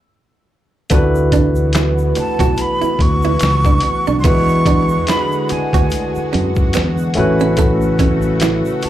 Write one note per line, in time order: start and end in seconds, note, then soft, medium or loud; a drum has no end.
0.90 2.12 D2 loud
0.90 4.21 E3 medium
0.90 4.20 A3 medium
0.90 1.07 B3 medium
0.90 4.21 B3 medium
0.90 4.20 D4 medium
0.90 4.21 E4 medium
0.90 8.89 F#4 medium
0.90 4.21 F#4 medium
0.90 kick loud
0.90 closed hi-hat medium
0.90 shaker medium
0.94 4.22 B4 medium
1.15 shaker soft
1.32 1.48 D4 medium
1.32 kick medium
1.32 closed hi-hat medium
1.32 shaker soft
1.55 shaker medium
1.73 1.90 E4 medium
1.73 finger snap medium
1.73 snare loud
1.73 closed hi-hat medium
1.73 shaker medium
1.98 shaker soft
2.15 2.63 A5 medium
2.15 muted hollow-body jazz guitar stroke soft
2.15 muted fingered electric bass stroke soft
2.15 closed hi-hat medium
2.15 shaker soft
2.39 2.55 B1 loud
2.39 2.52 F#4 medium
2.39 kick loud
2.39 closed hi-hat soft
2.39 shaker soft
2.57 closed hi-hat medium
2.57 shaker medium
2.61 3.03 B5 loud
2.81 2.93 E4 medium
2.81 muted fingered electric bass stroke soft
2.81 shaker soft
2.99 3.35 D2 loud
2.99 4.19 C#6 loud
2.99 muted hollow-body jazz guitar stroke soft
2.99 kick medium
2.99 closed hi-hat medium
3.22 3.36 E4 medium
3.22 shaker soft
3.39 3.77 C#2 medium
3.39 finger snap medium
3.39 snare loud
3.39 closed hi-hat medium
3.39 shaker medium
3.64 3.77 D4 medium
3.64 kick loud
3.64 shaker medium
3.80 muted hollow-body jazz guitar stroke soft
3.80 closed hi-hat medium
4.07 4.25 B1 medium
4.07 4.19 D4 medium
4.07 shaker soft
4.20 4.31 F#3 medium
4.20 4.27 C6 medium
4.24 4.97 E2 loud
4.24 7.13 D3 medium
4.24 7.13 G#3 medium
4.24 4.40 B3 medium
4.24 7.12 D4 medium
4.24 7.12 E4 medium
4.24 7.13 F#4 medium
4.24 7.13 B4 medium
4.24 5.11 C#6 loud
4.24 kick loud
4.24 closed hi-hat medium
4.24 shaker medium
4.30 7.15 G#3 medium
4.49 shaker soft
4.66 4.82 D4 medium
4.66 kick medium
4.66 closed hi-hat medium
4.66 shaker soft
4.89 shaker soft
5.07 5.23 E4 medium
5.07 5.50 B5 medium
5.07 finger snap medium
5.07 snare loud
5.07 closed hi-hat medium
5.07 shaker medium
5.32 shaker soft
5.49 6.29 G#5 medium
5.49 muted hollow-body jazz guitar stroke soft
5.49 muted fingered electric bass stroke soft
5.49 closed hi-hat medium
5.49 shaker soft
5.73 5.89 D2 loud
5.73 5.85 F#4 medium
5.73 kick medium
5.73 closed hi-hat medium
5.73 shaker soft
5.90 closed hi-hat medium
5.90 shaker medium
6.15 muted fingered electric bass stroke soft
6.15 shaker soft
6.33 6.77 F#2 medium
6.33 6.48 C#4 medium
6.33 closed hi-hat medium
6.55 kick medium
6.55 shaker soft
6.73 6.90 B3 medium
6.73 finger snap medium
6.73 snare loud
6.73 closed hi-hat medium
6.73 shaker medium
6.77 7.12 E2 medium
6.98 shaker soft
7.14 8.89 C#3 medium
7.14 8.89 A3 medium
7.14 8.89 C#4 medium
7.14 8.89 E4 medium
7.14 muted hollow-body jazz guitar stroke soft
7.14 closed hi-hat medium
7.18 8.61 A1 medium
7.18 8.89 F#4 medium
7.18 8.89 B4 medium
7.40 7.52 C#4 medium
7.40 shaker soft
7.57 7.74 A3 medium
7.57 kick loud
7.57 closed hi-hat medium
7.57 shaker medium
7.81 shaker soft
7.99 8.15 C#4 medium
7.99 kick medium
7.99 closed hi-hat medium
7.99 shaker soft
8.22 shaker medium
8.40 8.57 E4 medium
8.40 finger snap medium
8.40 snare loud
8.40 closed hi-hat medium
8.40 shaker medium
8.65 shaker soft
8.82 8.89 A5 medium
8.82 muted hollow-body jazz guitar stroke soft
8.82 muted fingered electric bass stroke soft
8.82 closed hi-hat medium
8.82 shaker soft